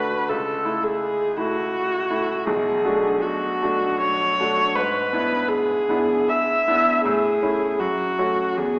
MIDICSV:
0, 0, Header, 1, 3, 480
1, 0, Start_track
1, 0, Key_signature, 3, "major"
1, 0, Tempo, 730816
1, 194, Time_signature, 3, 2, 24, 8
1, 2114, Tempo, 805369
1, 2594, Tempo, 733496
1, 3554, Tempo, 796813
1, 4034, Tempo, 763359
1, 5607, End_track
2, 0, Start_track
2, 0, Title_t, "Viola"
2, 0, Program_c, 0, 41
2, 0, Note_on_c, 0, 71, 45
2, 188, Note_on_c, 0, 69, 40
2, 198, Note_off_c, 0, 71, 0
2, 546, Note_on_c, 0, 68, 47
2, 556, Note_off_c, 0, 69, 0
2, 899, Note_on_c, 0, 66, 55
2, 909, Note_off_c, 0, 68, 0
2, 1620, Note_on_c, 0, 68, 50
2, 1630, Note_off_c, 0, 66, 0
2, 2112, Note_on_c, 0, 66, 45
2, 2121, Note_off_c, 0, 68, 0
2, 2583, Note_off_c, 0, 66, 0
2, 2587, Note_on_c, 0, 73, 61
2, 3074, Note_on_c, 0, 71, 50
2, 3084, Note_off_c, 0, 73, 0
2, 3551, Note_on_c, 0, 68, 57
2, 3561, Note_off_c, 0, 71, 0
2, 4037, Note_on_c, 0, 76, 61
2, 4046, Note_off_c, 0, 68, 0
2, 4507, Note_off_c, 0, 76, 0
2, 4511, Note_on_c, 0, 68, 55
2, 4984, Note_on_c, 0, 66, 44
2, 4994, Note_off_c, 0, 68, 0
2, 5468, Note_on_c, 0, 68, 52
2, 5477, Note_off_c, 0, 66, 0
2, 5607, Note_off_c, 0, 68, 0
2, 5607, End_track
3, 0, Start_track
3, 0, Title_t, "Grand piano"
3, 0, Program_c, 1, 0
3, 0, Control_c, 1, 64, 127
3, 0, Note_on_c, 1, 38, 33
3, 0, Note_on_c, 1, 57, 26
3, 0, Note_on_c, 1, 62, 23
3, 0, Note_on_c, 1, 66, 28
3, 170, Note_off_c, 1, 57, 0
3, 171, Note_off_c, 1, 62, 0
3, 172, Note_off_c, 1, 66, 0
3, 195, Note_on_c, 1, 37, 36
3, 207, Control_c, 1, 64, 0
3, 210, Note_off_c, 1, 38, 0
3, 314, Control_c, 1, 64, 127
3, 424, Note_off_c, 1, 37, 0
3, 426, Note_on_c, 1, 57, 26
3, 428, Note_on_c, 1, 64, 27
3, 873, Note_off_c, 1, 57, 0
3, 874, Note_off_c, 1, 64, 0
3, 901, Note_on_c, 1, 57, 26
3, 903, Note_on_c, 1, 64, 29
3, 1359, Note_off_c, 1, 57, 0
3, 1360, Note_off_c, 1, 64, 0
3, 1381, Note_on_c, 1, 57, 26
3, 1384, Note_on_c, 1, 64, 30
3, 1599, Note_off_c, 1, 57, 0
3, 1601, Note_off_c, 1, 64, 0
3, 1623, Note_on_c, 1, 35, 37
3, 1639, Control_c, 1, 64, 0
3, 1744, Control_c, 1, 64, 127
3, 1859, Note_off_c, 1, 35, 0
3, 1869, Note_on_c, 1, 57, 26
3, 1871, Note_on_c, 1, 62, 28
3, 1872, Note_on_c, 1, 66, 28
3, 2331, Note_off_c, 1, 57, 0
3, 2332, Note_off_c, 1, 62, 0
3, 2332, Note_off_c, 1, 66, 0
3, 2354, Note_on_c, 1, 57, 29
3, 2355, Note_on_c, 1, 62, 30
3, 2361, Note_on_c, 1, 66, 33
3, 2816, Note_off_c, 1, 57, 0
3, 2816, Note_off_c, 1, 62, 0
3, 2820, Note_off_c, 1, 66, 0
3, 2838, Note_on_c, 1, 57, 31
3, 2844, Note_on_c, 1, 62, 28
3, 2844, Note_on_c, 1, 66, 31
3, 3053, Note_off_c, 1, 57, 0
3, 3057, Note_off_c, 1, 62, 0
3, 3057, Note_off_c, 1, 66, 0
3, 3075, Note_on_c, 1, 44, 40
3, 3091, Control_c, 1, 64, 0
3, 3185, Control_c, 1, 64, 127
3, 3306, Note_off_c, 1, 44, 0
3, 3317, Note_on_c, 1, 59, 26
3, 3317, Note_on_c, 1, 62, 28
3, 3323, Note_on_c, 1, 64, 30
3, 3769, Note_off_c, 1, 59, 0
3, 3769, Note_off_c, 1, 62, 0
3, 3772, Note_off_c, 1, 64, 0
3, 3795, Note_on_c, 1, 59, 30
3, 3797, Note_on_c, 1, 62, 29
3, 3800, Note_on_c, 1, 64, 30
3, 4251, Note_off_c, 1, 59, 0
3, 4252, Note_off_c, 1, 62, 0
3, 4254, Note_off_c, 1, 64, 0
3, 4279, Note_on_c, 1, 59, 32
3, 4281, Note_on_c, 1, 62, 29
3, 4281, Note_on_c, 1, 64, 32
3, 4487, Note_off_c, 1, 59, 0
3, 4488, Note_off_c, 1, 62, 0
3, 4488, Note_off_c, 1, 64, 0
3, 4513, Note_on_c, 1, 45, 41
3, 4520, Control_c, 1, 64, 0
3, 4627, Control_c, 1, 64, 127
3, 4739, Note_off_c, 1, 45, 0
3, 4747, Note_on_c, 1, 57, 26
3, 4750, Note_on_c, 1, 61, 27
3, 4753, Note_on_c, 1, 64, 29
3, 4961, Note_off_c, 1, 57, 0
3, 4962, Note_off_c, 1, 61, 0
3, 4964, Note_off_c, 1, 64, 0
3, 4985, Note_on_c, 1, 42, 35
3, 4992, Control_c, 1, 64, 0
3, 5081, Control_c, 1, 64, 127
3, 5217, Note_off_c, 1, 42, 0
3, 5226, Note_on_c, 1, 57, 26
3, 5229, Note_on_c, 1, 61, 29
3, 5232, Note_on_c, 1, 66, 30
3, 5445, Note_off_c, 1, 57, 0
3, 5447, Note_off_c, 1, 61, 0
3, 5448, Note_off_c, 1, 66, 0
3, 5472, Note_on_c, 1, 40, 38
3, 5479, Control_c, 1, 64, 0
3, 5599, Control_c, 1, 64, 127
3, 5607, Note_off_c, 1, 40, 0
3, 5607, End_track
0, 0, End_of_file